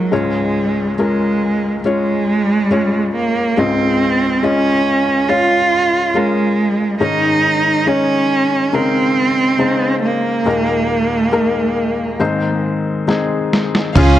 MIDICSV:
0, 0, Header, 1, 7, 480
1, 0, Start_track
1, 0, Key_signature, -5, "major"
1, 0, Tempo, 862069
1, 62, Time_signature, 4, 2, 24, 8
1, 5821, Tempo, 874636
1, 7873, End_track
2, 0, Start_track
2, 0, Title_t, "Violin section"
2, 0, Program_c, 0, 48
2, 7745, Note_on_c, 0, 77, 78
2, 7746, Note_on_c, 0, 65, 77
2, 7873, Note_off_c, 0, 65, 0
2, 7873, Note_off_c, 0, 77, 0
2, 7873, End_track
3, 0, Start_track
3, 0, Title_t, "Felt piano"
3, 0, Program_c, 1, 0
3, 0, Control_c, 1, 64, 127
3, 0, Note_on_c, 1, 56, 46
3, 0, Note_on_c, 1, 58, 46
3, 0, Note_on_c, 1, 63, 47
3, 0, Note_on_c, 1, 65, 53
3, 0, Note_on_c, 1, 70, 66
3, 64, Note_off_c, 1, 56, 0
3, 64, Note_on_c, 1, 56, 49
3, 66, Note_on_c, 1, 61, 47
3, 67, Note_on_c, 1, 37, 43
3, 67, Note_on_c, 1, 44, 44
3, 68, Note_off_c, 1, 65, 0
3, 68, Note_on_c, 1, 65, 48
3, 70, Control_c, 1, 64, 0
3, 71, Note_on_c, 1, 73, 58
3, 73, Note_off_c, 1, 70, 0
3, 74, Note_off_c, 1, 58, 0
3, 75, Note_off_c, 1, 63, 0
3, 157, Control_c, 1, 64, 127
3, 523, Note_off_c, 1, 56, 0
3, 524, Note_off_c, 1, 61, 0
3, 525, Note_off_c, 1, 65, 0
3, 526, Note_off_c, 1, 73, 0
3, 549, Note_on_c, 1, 56, 53
3, 551, Note_on_c, 1, 61, 44
3, 553, Note_on_c, 1, 65, 46
3, 554, Note_on_c, 1, 70, 58
3, 1005, Note_off_c, 1, 56, 0
3, 1007, Note_off_c, 1, 61, 0
3, 1007, Note_off_c, 1, 65, 0
3, 1008, Note_off_c, 1, 70, 0
3, 1030, Note_on_c, 1, 56, 51
3, 1031, Note_on_c, 1, 61, 46
3, 1034, Note_on_c, 1, 65, 47
3, 1036, Note_on_c, 1, 73, 57
3, 1486, Note_off_c, 1, 56, 0
3, 1487, Note_off_c, 1, 61, 0
3, 1488, Note_off_c, 1, 65, 0
3, 1489, Note_off_c, 1, 73, 0
3, 1507, Note_on_c, 1, 56, 53
3, 1508, Note_on_c, 1, 61, 49
3, 1512, Note_on_c, 1, 65, 47
3, 1513, Note_on_c, 1, 73, 56
3, 1963, Note_off_c, 1, 56, 0
3, 1964, Note_off_c, 1, 61, 0
3, 1966, Note_off_c, 1, 65, 0
3, 1966, Note_off_c, 1, 73, 0
3, 1968, Note_off_c, 1, 37, 0
3, 1968, Note_off_c, 1, 44, 0
3, 1988, Note_on_c, 1, 56, 52
3, 1991, Note_on_c, 1, 37, 48
3, 1991, Note_on_c, 1, 49, 47
3, 1993, Note_on_c, 1, 44, 46
3, 1993, Note_on_c, 1, 65, 47
3, 1995, Note_on_c, 1, 75, 57
3, 2441, Note_off_c, 1, 56, 0
3, 2442, Note_off_c, 1, 49, 0
3, 2444, Note_off_c, 1, 65, 0
3, 2445, Note_off_c, 1, 75, 0
3, 2464, Note_on_c, 1, 56, 53
3, 2467, Note_on_c, 1, 61, 48
3, 2469, Note_on_c, 1, 65, 47
3, 2471, Note_on_c, 1, 75, 58
3, 2919, Note_off_c, 1, 56, 0
3, 2921, Note_off_c, 1, 61, 0
3, 2922, Note_off_c, 1, 65, 0
3, 2923, Note_off_c, 1, 75, 0
3, 2944, Note_on_c, 1, 56, 55
3, 2946, Note_on_c, 1, 61, 49
3, 2950, Note_on_c, 1, 65, 47
3, 2953, Note_on_c, 1, 73, 60
3, 3399, Note_off_c, 1, 56, 0
3, 3400, Note_off_c, 1, 61, 0
3, 3402, Note_off_c, 1, 65, 0
3, 3403, Note_off_c, 1, 73, 0
3, 3423, Note_on_c, 1, 56, 52
3, 3426, Note_on_c, 1, 61, 51
3, 3428, Note_on_c, 1, 65, 51
3, 3431, Note_on_c, 1, 70, 58
3, 3876, Note_off_c, 1, 56, 0
3, 3877, Note_off_c, 1, 61, 0
3, 3878, Note_off_c, 1, 37, 0
3, 3878, Note_off_c, 1, 65, 0
3, 3879, Note_off_c, 1, 44, 0
3, 3880, Note_off_c, 1, 70, 0
3, 3899, Note_on_c, 1, 56, 54
3, 3901, Note_on_c, 1, 44, 45
3, 3902, Note_on_c, 1, 61, 51
3, 3902, Note_on_c, 1, 63, 49
3, 3903, Note_on_c, 1, 51, 45
3, 3905, Note_on_c, 1, 73, 58
3, 3906, Control_c, 1, 64, 0
3, 4000, Control_c, 1, 64, 127
3, 4354, Note_off_c, 1, 56, 0
3, 4356, Note_off_c, 1, 61, 0
3, 4356, Note_off_c, 1, 63, 0
3, 4357, Note_off_c, 1, 73, 0
3, 4379, Note_on_c, 1, 56, 55
3, 4381, Note_on_c, 1, 61, 51
3, 4382, Note_on_c, 1, 63, 51
3, 4385, Note_on_c, 1, 73, 58
3, 4835, Note_off_c, 1, 56, 0
3, 4836, Note_off_c, 1, 61, 0
3, 4837, Note_off_c, 1, 63, 0
3, 4838, Note_off_c, 1, 73, 0
3, 4859, Note_on_c, 1, 56, 60
3, 4861, Note_on_c, 1, 49, 52
3, 4863, Note_on_c, 1, 63, 50
3, 4865, Note_on_c, 1, 70, 66
3, 5316, Note_off_c, 1, 49, 0
3, 5316, Note_off_c, 1, 56, 0
3, 5317, Note_off_c, 1, 63, 0
3, 5319, Note_off_c, 1, 70, 0
3, 5337, Note_on_c, 1, 56, 57
3, 5339, Note_on_c, 1, 49, 50
3, 5340, Note_on_c, 1, 63, 51
3, 5342, Note_on_c, 1, 72, 62
3, 5796, Note_off_c, 1, 56, 0
3, 5797, Note_off_c, 1, 49, 0
3, 5797, Note_off_c, 1, 63, 0
3, 5799, Note_off_c, 1, 72, 0
3, 5800, Note_off_c, 1, 44, 0
3, 5801, Note_off_c, 1, 51, 0
3, 5821, Note_on_c, 1, 56, 55
3, 5822, Note_on_c, 1, 58, 51
3, 5823, Note_on_c, 1, 46, 46
3, 5825, Note_on_c, 1, 39, 48
3, 5825, Note_on_c, 1, 63, 48
3, 5827, Note_on_c, 1, 70, 57
3, 5829, Control_c, 1, 64, 0
3, 5916, Control_c, 1, 64, 127
3, 6274, Note_off_c, 1, 56, 0
3, 6275, Note_off_c, 1, 58, 0
3, 6276, Note_off_c, 1, 63, 0
3, 6277, Note_off_c, 1, 70, 0
3, 6296, Note_on_c, 1, 56, 62
3, 6300, Note_on_c, 1, 58, 59
3, 6301, Note_on_c, 1, 63, 56
3, 6302, Note_on_c, 1, 70, 72
3, 6753, Note_off_c, 1, 56, 0
3, 6754, Note_off_c, 1, 58, 0
3, 6755, Note_off_c, 1, 63, 0
3, 6755, Note_off_c, 1, 70, 0
3, 6756, Note_off_c, 1, 46, 0
3, 6757, Note_off_c, 1, 39, 0
3, 6776, Note_on_c, 1, 56, 64
3, 6778, Note_on_c, 1, 51, 52
3, 6778, Note_on_c, 1, 60, 60
3, 6779, Note_on_c, 1, 63, 58
3, 6780, Note_on_c, 1, 44, 54
3, 6782, Note_on_c, 1, 72, 70
3, 6785, Control_c, 1, 64, 0
3, 6875, Control_c, 1, 64, 127
3, 7235, Note_off_c, 1, 56, 0
3, 7237, Note_off_c, 1, 60, 0
3, 7237, Note_off_c, 1, 63, 0
3, 7238, Note_off_c, 1, 72, 0
3, 7258, Note_on_c, 1, 56, 63
3, 7261, Note_on_c, 1, 60, 54
3, 7261, Note_on_c, 1, 63, 56
3, 7265, Note_on_c, 1, 68, 68
3, 7718, Note_off_c, 1, 56, 0
3, 7720, Note_off_c, 1, 60, 0
3, 7720, Note_off_c, 1, 63, 0
3, 7722, Note_off_c, 1, 44, 0
3, 7722, Note_off_c, 1, 51, 0
3, 7722, Note_off_c, 1, 68, 0
3, 7742, Note_on_c, 1, 61, 91
3, 7744, Note_on_c, 1, 44, 61
3, 7745, Note_on_c, 1, 65, 83
3, 7749, Control_c, 1, 64, 0
3, 7750, Note_on_c, 1, 68, 89
3, 7842, Control_c, 1, 64, 127
3, 7873, Note_off_c, 1, 44, 0
3, 7873, Note_off_c, 1, 61, 0
3, 7873, Note_off_c, 1, 65, 0
3, 7873, Note_off_c, 1, 68, 0
3, 7873, End_track
4, 0, Start_track
4, 0, Title_t, "Cello"
4, 0, Program_c, 2, 42
4, 0, Note_on_c, 2, 54, 61
4, 70, Note_on_c, 2, 56, 60
4, 78, Note_off_c, 2, 54, 0
4, 547, Note_off_c, 2, 56, 0
4, 550, Note_on_c, 2, 56, 60
4, 1008, Note_off_c, 2, 56, 0
4, 1030, Note_on_c, 2, 56, 71
4, 1728, Note_off_c, 2, 56, 0
4, 1758, Note_on_c, 2, 58, 66
4, 1996, Note_on_c, 2, 60, 71
4, 2004, Note_off_c, 2, 58, 0
4, 2472, Note_on_c, 2, 61, 80
4, 2480, Note_off_c, 2, 60, 0
4, 2947, Note_on_c, 2, 65, 83
4, 2956, Note_off_c, 2, 61, 0
4, 3430, Note_on_c, 2, 56, 71
4, 3438, Note_off_c, 2, 65, 0
4, 3903, Note_off_c, 2, 56, 0
4, 3910, Note_on_c, 2, 63, 81
4, 4387, Note_on_c, 2, 61, 80
4, 4395, Note_off_c, 2, 63, 0
4, 4870, Note_on_c, 2, 60, 82
4, 4878, Note_off_c, 2, 61, 0
4, 5586, Note_off_c, 2, 60, 0
4, 5594, Note_on_c, 2, 58, 69
4, 7003, Note_off_c, 2, 58, 0
4, 7752, Note_on_c, 2, 61, 85
4, 7873, Note_off_c, 2, 61, 0
4, 7873, End_track
5, 0, Start_track
5, 0, Title_t, "Steel-string acoustic guitar"
5, 0, Program_c, 3, 25
5, 7746, Note_on_c, 3, 49, 75
5, 7749, Note_on_c, 3, 68, 63
5, 7873, Note_off_c, 3, 49, 0
5, 7873, Note_off_c, 3, 68, 0
5, 7873, End_track
6, 0, Start_track
6, 0, Title_t, "Fingered electric bass"
6, 0, Program_c, 4, 33
6, 7742, Note_on_c, 4, 37, 93
6, 7873, Note_off_c, 4, 37, 0
6, 7873, End_track
7, 0, Start_track
7, 0, Title_t, "Drums"
7, 7266, Note_on_c, 9, 38, 41
7, 7321, Note_off_c, 9, 38, 0
7, 7511, Note_on_c, 9, 38, 65
7, 7566, Note_off_c, 9, 38, 0
7, 7629, Note_on_c, 9, 38, 62
7, 7684, Note_off_c, 9, 38, 0
7, 7742, Note_on_c, 9, 43, 89
7, 7742, Note_on_c, 9, 49, 81
7, 7744, Note_on_c, 9, 36, 86
7, 7797, Note_off_c, 9, 43, 0
7, 7797, Note_off_c, 9, 49, 0
7, 7798, Note_off_c, 9, 36, 0
7, 7873, End_track
0, 0, End_of_file